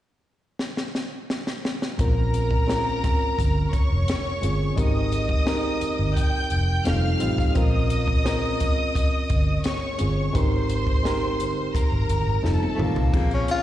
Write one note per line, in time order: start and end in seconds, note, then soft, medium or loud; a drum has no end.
0.59 snare medium
0.77 snare medium
0.95 snare medium
1.30 snare medium
1.47 snare medium
1.65 snare medium
1.82 snare medium
1.98 3.04 A#1 medium
1.98 2.43 G#3 medium
1.98 2.44 C4 medium
1.98 2.44 C#4 medium
1.98 2.44 F4 medium
1.98 3.70 A#4 medium
1.98 2.45 A#4 medium
1.98 3.69 A#5 medium
1.98 kick medium
1.98 closed hi-hat medium
2.34 closed hi-hat medium
2.51 kick medium
2.67 3.58 G#3 medium
2.67 3.58 C4 medium
2.67 3.59 C#4 medium
2.67 3.59 F4 medium
2.67 3.59 A#4 medium
2.67 snare loud
2.67 closed hi-hat medium
3.04 3.31 G#1 medium
3.04 kick medium
3.04 snare soft
3.04 closed hi-hat medium
3.38 3.65 G1 medium
3.38 kick medium
3.38 closed hi-hat medium
3.73 4.75 C#5 medium
3.73 4.75 C#6 medium
3.73 kick medium
3.73 closed hi-hat medium
3.90 4.04 F1 medium
4.08 snare loud
4.08 closed hi-hat medium
4.41 4.70 G1 medium
4.41 4.64 G#3 medium
4.41 4.65 C4 medium
4.41 4.65 C#4 medium
4.41 4.65 F4 medium
4.41 4.66 G#4 medium
4.41 closed hi-hat medium
4.76 5.32 G#1 loud
4.76 5.22 G#3 medium
4.76 5.22 C4 medium
4.76 5.22 D#4 medium
4.76 5.23 G4 medium
4.76 5.23 A#4 medium
4.76 6.14 D#5 medium
4.76 6.14 D#6 medium
4.76 kick medium
4.76 closed hi-hat medium
5.12 closed hi-hat medium
5.29 kick medium
5.46 6.37 G#3 medium
5.46 6.37 C4 medium
5.46 6.37 D#4 medium
5.46 6.38 G4 medium
5.46 6.38 A#4 medium
5.46 snare loud
5.46 closed hi-hat medium
5.81 muted fingered electric bass stroke soft
5.81 closed hi-hat medium
5.99 6.13 G1 medium
6.16 6.85 G5 medium
6.16 6.85 G6 medium
6.16 kick medium
6.16 closed hi-hat medium
6.50 6.79 F1 medium
6.50 closed hi-hat medium
6.84 7.14 F1 medium
6.84 7.13 G3 medium
6.84 7.14 C4 medium
6.84 7.14 D#4 medium
6.84 7.14 F4 medium
6.84 7.14 A4 medium
6.84 7.55 F5 medium
6.84 7.55 F6 medium
6.84 snare medium
6.84 closed hi-hat medium
7.19 7.49 A1 medium
7.19 7.43 G3 medium
7.19 7.43 C4 medium
7.19 7.44 D#4 medium
7.19 7.44 F4 medium
7.19 7.44 G4 medium
7.19 closed hi-hat medium
7.38 kick medium
7.38 snare soft
7.54 8.61 A#1 medium
7.54 8.00 G#3 medium
7.54 8.01 C4 medium
7.54 8.01 C#4 medium
7.54 8.02 F4 medium
7.54 8.02 A#4 medium
7.54 9.61 D#5 medium
7.54 9.61 D#6 medium
7.54 kick loud
7.54 closed hi-hat medium
7.90 closed hi-hat medium
8.08 kick medium
8.24 9.15 G#3 medium
8.24 9.16 C4 medium
8.24 9.16 C#4 medium
8.24 9.17 F4 medium
8.24 9.17 A#4 medium
8.24 snare loud
8.24 closed hi-hat medium
8.60 8.88 G#1 medium
8.60 kick medium
8.60 snare soft
8.60 closed hi-hat medium
8.95 kick medium
8.95 closed hi-hat medium
9.29 9.57 G1 medium
9.29 kick medium
9.29 closed hi-hat medium
9.64 10.34 C#5 medium
9.64 10.34 C#6 medium
9.64 snare loud
9.64 closed hi-hat medium
9.98 10.28 G1 medium
9.98 10.22 G#3 medium
9.98 10.22 C4 medium
9.98 10.23 C#4 medium
9.98 10.23 F4 medium
9.98 10.23 G#4 medium
9.98 closed hi-hat medium
10.33 11.40 G#1 medium
10.33 10.79 G#3 medium
10.33 10.80 C4 medium
10.33 10.80 D#4 medium
10.33 10.80 G4 medium
10.33 10.81 A#4 medium
10.33 11.72 C5 medium
10.33 11.72 C6 medium
10.33 kick medium
10.33 closed hi-hat medium
10.69 closed hi-hat medium
10.87 kick medium
11.03 11.94 G#3 medium
11.03 11.95 C4 medium
11.03 11.95 D#4 medium
11.03 11.95 G4 medium
11.03 11.96 A#4 medium
11.03 snare loud
11.03 closed hi-hat medium
11.40 11.67 G1 medium
11.40 closed hi-hat medium
11.75 12.43 A#4 medium
11.75 12.43 A#5 medium
11.75 kick medium
11.75 closed hi-hat medium
11.92 12.05 G#1 medium
12.10 12.23 G1 medium
12.10 closed hi-hat medium
12.27 12.40 G#1 medium
12.42 12.57 F1 medium
12.42 12.71 G3 medium
12.42 12.72 C4 medium
12.42 12.72 D#4 medium
12.42 12.72 F4 medium
12.42 13.13 A4 medium
12.42 12.73 A4 medium
12.42 13.13 A5 medium
12.42 snare soft
12.63 high tom soft
12.74 13.01 G3 medium
12.74 12.84 A3 soft
12.74 13.01 C4 medium
12.79 12.92 A1 medium
12.79 13.01 D#4 medium
12.79 13.02 F4 medium
12.79 13.02 A4 medium
12.79 mid tom medium
12.83 13.33 A#3 medium
12.96 13.10 C2 medium
12.96 floor tom medium
13.12 13.41 A#1 medium
13.12 13.63 A#3 medium
13.12 13.63 C4 medium
13.12 13.63 C#4 medium
13.12 13.63 F4 medium
13.12 13.63 G#4 medium
13.12 kick loud
13.12 crash medium
13.31 13.49 C#4 medium
13.31 closed hi-hat soft
13.48 13.63 F4 loud
13.48 closed hi-hat medium